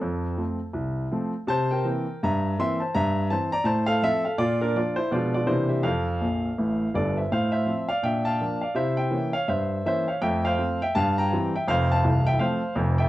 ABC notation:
X:1
M:4/4
L:1/8
Q:"Swing" 1/4=165
K:F
V:1 name="Grand piano"
[CA]4- [CA] z3 | [ca] [Bg]3 [eb]2 [ec'] [ca] | [eb]2 [ca] [db] [ca] [Af] [Ae] [Af] | [Fd] [DB] [Fd] [Ec] [Fd] [Fd] [Ec] [Ge] |
[Af]6 [Ad] [ce] | [cf] [ce]2 [df] [eg] [fa]2 [df] | [ce] [eg]2 [_df] [ce]2 [ce] [df] | [eg] [cf]2 [eg] [fa] [gb]2 [eg] |
[cf] [fa]2 [eg] [cf]2 z [eg] |]
V:2 name="Grand piano" clef=bass
F,,2 [F,A,C]2 C,,2 [F,A,C]2 | C,2 [E,B,C]2 G,,2 [E,B,C]2 | G,,2 [E,C]2 A,,2 [F,C]2 | B,,2 [F,B,D]2 [=B,,F,^G,D]2 [C,E,_B,D]2 |
F,,2 [B,,,B,,]2 [A,,,A,,]2 [G,,,G,,]2 | A,,2 [F,C]2 [B,,D]2 [F,B,D]2 | [C,E]2 [E,B,_D]2 G,,2 [E,B,D]2 | [F,,A,]2 [F,A,C]2 G,,2 [E,G,C]2 |
[F,,,F,,]2 [C,,,C,,]2 [F,A,C]2 [F,,,F,,]2 |]